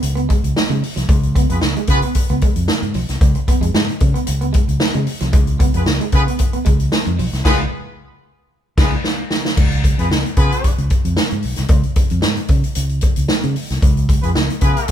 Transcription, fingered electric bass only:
0, 0, Header, 1, 3, 480
1, 0, Start_track
1, 0, Tempo, 530410
1, 985, Time_signature, 4, 2, 24, 8
1, 13496, End_track
2, 0, Start_track
2, 0, Title_t, "Fingered electric bass"
2, 0, Program_c, 0, 33
2, 26, Note_on_c, 0, 37, 92
2, 236, Note_off_c, 0, 37, 0
2, 394, Note_on_c, 0, 37, 89
2, 492, Note_off_c, 0, 37, 0
2, 630, Note_on_c, 0, 49, 103
2, 730, Note_off_c, 0, 49, 0
2, 875, Note_on_c, 0, 36, 82
2, 973, Note_off_c, 0, 36, 0
2, 986, Note_on_c, 0, 37, 112
2, 1308, Note_off_c, 0, 37, 0
2, 1357, Note_on_c, 0, 41, 92
2, 1454, Note_off_c, 0, 41, 0
2, 1473, Note_on_c, 0, 37, 78
2, 1581, Note_off_c, 0, 37, 0
2, 1705, Note_on_c, 0, 49, 94
2, 1817, Note_off_c, 0, 49, 0
2, 2080, Note_on_c, 0, 37, 90
2, 2176, Note_off_c, 0, 37, 0
2, 2316, Note_on_c, 0, 41, 84
2, 2413, Note_off_c, 0, 41, 0
2, 2554, Note_on_c, 0, 44, 88
2, 2652, Note_off_c, 0, 44, 0
2, 2667, Note_on_c, 0, 35, 89
2, 2778, Note_off_c, 0, 35, 0
2, 2799, Note_on_c, 0, 36, 77
2, 2895, Note_off_c, 0, 36, 0
2, 2907, Note_on_c, 0, 37, 100
2, 3018, Note_off_c, 0, 37, 0
2, 3266, Note_on_c, 0, 41, 97
2, 3368, Note_off_c, 0, 41, 0
2, 3387, Note_on_c, 0, 44, 90
2, 3498, Note_off_c, 0, 44, 0
2, 3630, Note_on_c, 0, 49, 93
2, 3739, Note_off_c, 0, 49, 0
2, 3878, Note_on_c, 0, 37, 103
2, 4083, Note_off_c, 0, 37, 0
2, 4235, Note_on_c, 0, 37, 95
2, 4333, Note_off_c, 0, 37, 0
2, 4477, Note_on_c, 0, 49, 99
2, 4574, Note_off_c, 0, 49, 0
2, 4717, Note_on_c, 0, 36, 88
2, 4826, Note_off_c, 0, 36, 0
2, 4826, Note_on_c, 0, 37, 121
2, 5148, Note_off_c, 0, 37, 0
2, 5196, Note_on_c, 0, 41, 89
2, 5293, Note_off_c, 0, 41, 0
2, 5304, Note_on_c, 0, 37, 100
2, 5416, Note_off_c, 0, 37, 0
2, 5547, Note_on_c, 0, 49, 98
2, 5658, Note_off_c, 0, 49, 0
2, 6034, Note_on_c, 0, 37, 89
2, 6240, Note_off_c, 0, 37, 0
2, 6393, Note_on_c, 0, 41, 93
2, 6491, Note_off_c, 0, 41, 0
2, 6509, Note_on_c, 0, 35, 98
2, 6619, Note_off_c, 0, 35, 0
2, 6634, Note_on_c, 0, 36, 90
2, 6732, Note_off_c, 0, 36, 0
2, 6747, Note_on_c, 0, 37, 99
2, 6912, Note_off_c, 0, 37, 0
2, 7941, Note_on_c, 0, 37, 102
2, 8108, Note_off_c, 0, 37, 0
2, 8667, Note_on_c, 0, 37, 107
2, 8988, Note_off_c, 0, 37, 0
2, 9033, Note_on_c, 0, 41, 89
2, 9131, Note_off_c, 0, 41, 0
2, 9142, Note_on_c, 0, 37, 78
2, 9254, Note_off_c, 0, 37, 0
2, 9386, Note_on_c, 0, 49, 94
2, 9497, Note_off_c, 0, 49, 0
2, 9758, Note_on_c, 0, 37, 93
2, 9854, Note_off_c, 0, 37, 0
2, 9997, Note_on_c, 0, 41, 89
2, 10094, Note_off_c, 0, 41, 0
2, 10243, Note_on_c, 0, 44, 93
2, 10337, Note_off_c, 0, 44, 0
2, 10355, Note_on_c, 0, 35, 91
2, 10462, Note_off_c, 0, 35, 0
2, 10483, Note_on_c, 0, 36, 89
2, 10577, Note_off_c, 0, 36, 0
2, 10583, Note_on_c, 0, 37, 115
2, 10695, Note_off_c, 0, 37, 0
2, 10962, Note_on_c, 0, 41, 103
2, 11056, Note_off_c, 0, 41, 0
2, 11076, Note_on_c, 0, 44, 98
2, 11182, Note_off_c, 0, 44, 0
2, 11307, Note_on_c, 0, 49, 93
2, 11417, Note_off_c, 0, 49, 0
2, 11551, Note_on_c, 0, 37, 98
2, 11758, Note_off_c, 0, 37, 0
2, 11923, Note_on_c, 0, 37, 86
2, 12017, Note_off_c, 0, 37, 0
2, 12160, Note_on_c, 0, 49, 104
2, 12255, Note_off_c, 0, 49, 0
2, 12403, Note_on_c, 0, 36, 91
2, 12497, Note_off_c, 0, 36, 0
2, 12513, Note_on_c, 0, 37, 113
2, 12831, Note_off_c, 0, 37, 0
2, 12877, Note_on_c, 0, 41, 91
2, 12974, Note_off_c, 0, 41, 0
2, 12995, Note_on_c, 0, 37, 84
2, 13102, Note_off_c, 0, 37, 0
2, 13229, Note_on_c, 0, 49, 92
2, 13338, Note_off_c, 0, 49, 0
2, 13496, End_track
3, 0, Start_track
3, 0, Title_t, "Muted fingered electric bass strokes"
3, 1954, Note_on_c, 9, 29, 48
3, 2044, Note_off_c, 9, 29, 0
3, 9632, Note_on_c, 9, 29, 43
3, 9723, Note_off_c, 9, 29, 0
3, 13496, End_track
0, 0, End_of_file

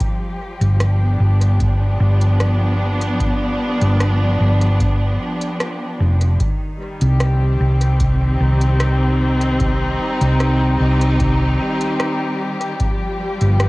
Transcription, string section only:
0, 0, Header, 1, 2, 480
1, 0, Start_track
1, 0, Key_signature, -3, "minor"
1, 0, Tempo, 800000
1, 2, Time_signature, 4, 2, 24, 8
1, 8213, End_track
2, 0, Start_track
2, 0, Title_t, "String section"
2, 0, Program_c, 0, 48
2, 0, Note_on_c, 0, 55, 68
2, 0, Note_on_c, 0, 67, 81
2, 3, Note_on_c, 0, 53, 75
2, 491, Note_on_c, 0, 62, 82
2, 617, Note_on_c, 0, 59, 86
2, 3841, Note_off_c, 0, 55, 0
2, 3841, Note_off_c, 0, 59, 0
2, 3842, Note_off_c, 0, 53, 0
2, 3842, Note_off_c, 0, 62, 0
2, 3842, Note_off_c, 0, 67, 0
2, 3844, Note_on_c, 0, 51, 75
2, 4072, Note_on_c, 0, 55, 85
2, 4241, Note_on_c, 0, 67, 90
2, 4393, Note_on_c, 0, 60, 87
2, 4984, Note_on_c, 0, 63, 86
2, 7682, Note_off_c, 0, 63, 0
2, 7683, Note_off_c, 0, 51, 0
2, 7683, Note_off_c, 0, 60, 0
2, 7684, Note_on_c, 0, 53, 81
2, 8067, Note_on_c, 0, 59, 90
2, 8213, Note_off_c, 0, 53, 0
2, 8213, Note_off_c, 0, 55, 0
2, 8213, Note_off_c, 0, 59, 0
2, 8213, Note_off_c, 0, 67, 0
2, 8213, End_track
0, 0, End_of_file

